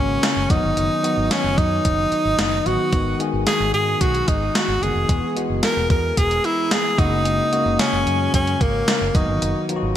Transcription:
Already playing: fingered electric bass G#1, tine electric piano C#3 G#3 A#3 F#4, tenor saxophone C#4
0.23 snare, closed hi-hat
0.36 fingered electric bass F#1
0.49 fingered electric bass F#1, tine electric piano D3 F#3 B3 F#4, tenor saxophone D#4, kick, closed hi-hat
0.56 tine electric piano D#3
0.64 fingered electric bass G1
0.77 fingered electric bass F#1, closed hi-hat
1.03 tine electric piano D#3 F#3 B3 F#4, closed hi-hat
1.17 fingered electric bass G#1
1.31 tenor saxophone C#4, snare, closed hi-hat
1.44 fingered electric bass F#1
1.58 fingered electric bass F#2, tenor saxophone D#4, kick, closed hi-hat
1.85 fingered electric bass F#1, kick, closed hi-hat
2.12 muted fingered electric bass stroke, closed hi-hat
2.25 fingered electric bass G#1
2.38 fingered electric bass F#1, snare, closed hi-hat
2.65 fingered electric bass A1, tine electric piano D#3 F#3 B3 F#4, tenor saxophone F#4, closed hi-hat
2.93 fingered electric bass G#1, tine electric piano D#3 G#3 B3 F#4, kick, closed hi-hat
3.19 tine electric piano D#3 G#3 B3 G#4, closed hi-hat
3.33 fingered electric bass G#1
3.47 tenor saxophone G#4, snare, closed hi-hat
3.60 fingered electric bass G#1
3.73 fingered electric bass G#2, tenor saxophone G#4, closed hi-hat
4.01 fingered electric bass B1, tenor saxophone F#4, kick, closed hi-hat
4.15 closed hi-hat
4.28 fingered electric bass G#1, tenor saxophone D#4, kick, closed hi-hat
4.55 tenor saxophone F#4, snare, closed hi-hat
4.68 fingered electric bass G#1
4.82 fingered electric bass F#1, tine electric piano D#3 G#3 B3 F#4, tenor saxophone G#4, closed hi-hat
4.95 fingered electric bass F1
5.09 fingered electric bass E1, tine electric piano E3 G#3 B3 G#4, kick, closed hi-hat
5.36 tine electric piano E3 G#3 B3 F#4, closed hi-hat
5.50 fingered electric bass F#1
5.63 tenor saxophone A#4, snare, closed hi-hat
5.77 fingered electric bass E1
5.90 fingered electric bass E2, tenor saxophone A#4, kick, closed hi-hat
6.17 fingered electric bass E1, tenor saxophone G#4, kick, closed hi-hat
6.31 closed hi-hat
6.44 tenor saxophone E4, closed hi-hat
6.71 tenor saxophone G#4, snare, closed hi-hat
6.98 fingered electric bass F#1, tine electric piano C#3 G#3 A#3 F#4, tenor saxophone D#4, kick, closed hi-hat
7.25 closed hi-hat
7.52 tine electric piano C#3 G#3 A#3 F#4, closed hi-hat
7.66 fingered electric bass F#1
7.79 tenor saxophone C#4, snare, closed hi-hat
7.93 fingered electric bass F#1
8.07 fingered electric bass F#2, closed hi-hat
8.34 fingered electric bass F#2, tenor saxophone C#4, kick, closed hi-hat
8.47 closed hi-hat
8.61 fingered electric bass G#1, tenor saxophone A#3, kick, closed hi-hat
8.88 snare, closed hi-hat
9.01 fingered electric bass F#1
9.14 fingered electric bass F#1, tine electric piano D#3 F#3 B3 F#4, tenor saxophone D#4, kick, closed hi-hat
9.28 fingered electric bass G1
9.42 fingered electric bass F#1, closed hi-hat
9.69 tine electric piano D#3 F#3 B3 F4, closed hi-hat
9.76 tine electric piano F#4
9.83 fingered electric bass G#1

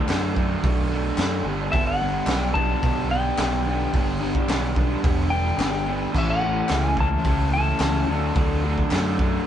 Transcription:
Already playing: overdriven electric guitar D4, electric slide guitar A5
0.08 picked electric bass F#2, overdriven electric guitar D3 F#3 A3 D4, snare, clap, open hi-hat
0.34 overdriven electric guitar D3 F#3 A3 D4, kick
0.63 picked electric bass B1, overdriven electric guitar D3 F#3 A3 D4, kick, open hi-hat
0.90 overdriven electric guitar D3 F#3 A3 D4
1.17 picked electric bass F#2, overdriven electric guitar D3 F#3 A3 D4, snare, clap, open hi-hat
1.44 picked electric bass G1, overdriven electric guitar G2 D3
1.48 overdriven electric guitar G3 B3 D4
1.72 picked electric bass G1, overdriven electric guitar G2 D3 G3, electric slide guitar E5, kick, open hi-hat
1.76 overdriven electric guitar B3 D4
1.87 electric slide guitar F#5
2.00 overdriven electric guitar G2 D3 G3 B3 D4
2.26 picked electric bass B1, overdriven electric guitar G2 D3 G3 B3, snare, clap, open hi-hat
2.31 overdriven electric guitar D4
2.40 electric slide guitar G5
2.54 overdriven electric guitar G2 D3 G3 B3, electric slide guitar A5, kick
2.58 overdriven electric guitar D4
2.82 picked electric bass B1, overdriven electric guitar G2 D3 G3 B3 D4, kick, open hi-hat
3.10 overdriven electric guitar G2 D3 G3 B3 D4, electric slide guitar G5
3.38 picked electric bass B1, overdriven electric guitar G2 D3 G3 B3 D4, snare, clap, open hi-hat
3.63 overdriven electric guitar G2 D3 G3 B3 D4
3.92 picked electric bass G1, overdriven electric guitar G2 D3 G3 B3 D4, kick, open hi-hat
4.20 overdriven electric guitar G2 D3 G3 B3 D4
4.35 kick
4.48 picked electric bass B1, overdriven electric guitar G2 D3 G3 B3, snare, clap, open hi-hat
4.52 overdriven electric guitar D4
4.75 overdriven electric guitar G2 D3 G3 B3 D4, kick
5.03 picked electric bass E1, overdriven electric guitar G2 D3 G3 B3, kick, open hi-hat
5.07 overdriven electric guitar D4
5.30 overdriven electric guitar G2 D3 G3 B3 D4, electric slide guitar G5
5.58 picked electric bass G1, overdriven electric guitar G2 D3 G3 B3 D4, snare, clap, open hi-hat
5.86 overdriven electric guitar G2 D3 G3 B3 D4
6.12 picked electric bass A1, overdriven electric guitar A2 E3 A3 C#4 E4, kick, crash
6.18 electric slide guitar E5
6.30 electric slide guitar F#5
6.41 overdriven electric guitar A2 E3 A3 C#4 E4
6.69 picked electric bass C#2, overdriven electric guitar A2 E3 A3 C#4 E4, snare, clap, open hi-hat
6.86 electric slide guitar G#5
6.97 overdriven electric guitar A2 E3 A3 C#4, electric slide guitar A5, kick
7.01 overdriven electric guitar E4
7.24 picked electric bass C#2, overdriven electric guitar A2 E3 A3 C#4, kick, open hi-hat
7.29 overdriven electric guitar E4
7.53 overdriven electric guitar A2 E3 A3 C#4, electric slide guitar A5
7.58 overdriven electric guitar E4
7.79 picked electric bass C#2, overdriven electric guitar A2 E3 A3 C#4, snare, clap, open hi-hat
7.84 overdriven electric guitar E4
8.07 picked electric bass D2, overdriven electric guitar D3 F#3 A3 D4
8.35 picked electric bass D2, overdriven electric guitar D3 F#3 A3 D4, kick, open hi-hat
8.63 overdriven electric guitar D3 F#3 A3 D4
8.78 kick
8.91 picked electric bass F#2, overdriven electric guitar D3 F#3 A3, snare, clap, open hi-hat
8.95 overdriven electric guitar D4
9.19 overdriven electric guitar D3 F#3 A3 D4, kick

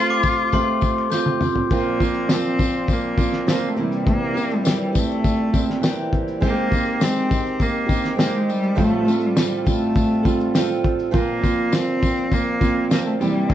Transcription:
Already playing: steel-string acoustic guitar A3 C4 F4 G4, cello F4
0.10 glockenspiel D6
0.23 kick, tambourine, shaker
0.52 steel-string acoustic guitar A3 C4 F4 G4, glockenspiel C6, kick, tambourine, shaker
0.81 kick, tambourine, shaker
0.98 finger snap, shaker
1.10 steel-string acoustic guitar A3 C4 F4 G4, glockenspiel G6, snare, tambourine
1.26 high tom
1.41 steel-string acoustic guitar C4 F4 G4, mid tom, tambourine
1.56 floor tom
1.70 steel-string acoustic guitar A#2 F3 A#3 C4 F4, harmonium A#2 F3 C4 F4, cello A#3, kick, tambourine, shaker
2.00 steel-string acoustic guitar A#3 C4 F4, kick, tambourine, shaker
2.14 shaker
2.29 steel-string acoustic guitar F3 A#3 C4 F4, snare, tambourine, shaker
2.34 cello C4
2.58 steel-string acoustic guitar A#3 C4 F4, kick, tambourine, shaker
2.87 kick, tambourine, shaker
2.93 cello A#3
3.17 steel-string acoustic guitar A#3 C4 F4, kick, tambourine, shaker
3.33 snare, shaker
3.46 steel-string acoustic guitar F3 A#3 C4 F4, snare, tambourine, shaker
3.53 cello A#3
3.68 cello A3
3.76 harmonium A#2 G3 E4, steel-string acoustic guitar C3 E3 A#3 C4 G4, shaker
3.83 cello G3
3.92 shaker
4.07 kick, shaker
4.12 cello A#3
4.35 steel-string acoustic guitar A#3 C4 G4, tambourine, shaker
4.51 shaker
4.55 cello G3
4.64 steel-string acoustic guitar E3 A#3 C4 G4, snare, tambourine, shaker
4.92 steel-string acoustic guitar C4 G4, kick, tambourine, shaker
4.99 cello A3
5.11 shaker
5.24 kick, tambourine, shaker
5.53 steel-string acoustic guitar A#3 C4 G4, kick, tambourine, shaker
5.70 snare
5.81 steel-string acoustic guitar E3 A#3 C4 G4, snare, tambourine, shaker
6.13 kick, shaker
6.28 shaker
6.40 harmonium D#3 G#3 G4, steel-string acoustic guitar G#3 C4 D#4 G4, cello A#3, kick, tambourine, shaker
6.70 steel-string acoustic guitar C4 D#4 G4, kick, tambourine, shaker
6.86 shaker
6.99 steel-string acoustic guitar G#3 C4 D#4 G4, snare, tambourine, shaker
7.04 cello C4
7.29 steel-string acoustic guitar C4 D#4 G4, kick, tambourine, shaker
7.46 shaker
7.59 cello A#3, kick, tambourine, shaker
7.86 steel-string acoustic guitar C4 D#4 G4, kick, tambourine, shaker
8.04 snare, shaker
8.15 steel-string acoustic guitar G#3 C4 D#4 G4, snare, shaker
8.19 cello A#3, tambourine
8.35 cello G#3
8.49 cello G3, tambourine, shaker
8.63 shaker
8.75 steel-string acoustic guitar A2 F3 G3 C4 F4 A4, harmonium A2 G3 F4, kick, tambourine, shaker
8.80 cello A3
9.05 steel-string acoustic guitar G3 C4 F4 A4, tambourine, shaker
9.21 shaker
9.26 cello G3
9.35 steel-string acoustic guitar G3 C4 F4 A4, snare, tambourine, shaker
9.64 steel-string acoustic guitar C4 F4 A4, kick, tambourine, shaker
9.68 steel-string acoustic guitar G3, cello A3
9.95 kick, tambourine, shaker
10.23 steel-string acoustic guitar G3 C4 F4 A4, kick, tambourine, shaker
10.40 shaker
10.54 steel-string acoustic guitar G3 C4 F4 A4, snare, tambourine, shaker
10.84 kick, shaker
10.99 shaker
11.11 steel-string acoustic guitar A#2 F3 A#3 C4 F4, harmonium A#2 F3, kick, tambourine, shaker
11.15 cello A#3
11.41 steel-string acoustic guitar A#3 C4 F4, kick, tambourine, shaker
11.71 steel-string acoustic guitar F3 A#3 C4 F4, cello C4, snare, tambourine, shaker
12.00 steel-string acoustic guitar A#3 C4 F4, kick, tambourine, shaker
12.18 shaker
12.31 cello A#3, kick, tambourine, shaker
12.61 steel-string acoustic guitar A#3 C4 F4, kick, tambourine, shaker
12.90 steel-string acoustic guitar F3 A#3 C4 F4, cello A#3, snare, tambourine, shaker
13.06 cello A3
13.20 steel-string acoustic guitar C3 E3 A#3 C4 G4, harmonium G3 E4, cello G3, tambourine, shaker
13.50 cello A#3, kick, shaker

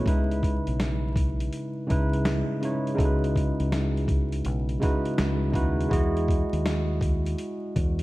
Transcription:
0.05 fingered electric bass C#2, tine electric piano C#3 G#3 D#4 E4, kick, closed hi-hat
0.09 tine electric piano B4
0.31 closed hi-hat
0.43 kick, closed hi-hat
0.67 fingered electric bass B1, closed hi-hat
0.80 snare, closed hi-hat
1.16 kick, closed hi-hat
1.40 closed hi-hat
1.53 closed hi-hat
1.87 tine electric piano C#3 G#3 D#4 E4, kick, closed hi-hat
1.91 fingered electric bass C#2, tine electric piano B4
2.13 closed hi-hat
2.25 snare, closed hi-hat
2.61 tine electric piano C#3 G#3 D#4 E4 C#5, closed hi-hat
2.87 closed hi-hat
2.94 tine electric piano C#3 G#3 D#4 E4 F#4, kick
2.99 fingered electric bass C#2, tine electric piano A4, closed hi-hat
3.05 tine electric piano B4
3.24 closed hi-hat
3.36 kick, closed hi-hat
3.60 fingered electric bass C#2, closed hi-hat
3.72 snare, closed hi-hat
3.97 closed hi-hat
4.08 kick, closed hi-hat
4.32 closed hi-hat
4.45 fingered electric bass B1, closed hi-hat
4.69 closed hi-hat
4.79 tine electric piano C#3 G#3 D#4 E4 F#4 B4, kick, snare, closed hi-hat
5.05 closed hi-hat
5.18 fingered electric bass C#2, snare, closed hi-hat
5.52 fingered electric bass D#2, tine electric piano C#3 G#3 D#4 E4 F#4 B4, kick, closed hi-hat
5.81 closed hi-hat
5.89 fingered electric bass E2, tine electric piano G#3 E4 F#4 G#4, kick
5.93 tine electric piano D#5, closed hi-hat
6.17 closed hi-hat
6.28 kick, closed hi-hat
6.53 fingered electric bass D#2, closed hi-hat
6.66 snare, closed hi-hat
7.01 kick, closed hi-hat
7.26 closed hi-hat
7.38 closed hi-hat
7.76 fingered electric bass E2, kick, closed hi-hat
7.99 closed hi-hat

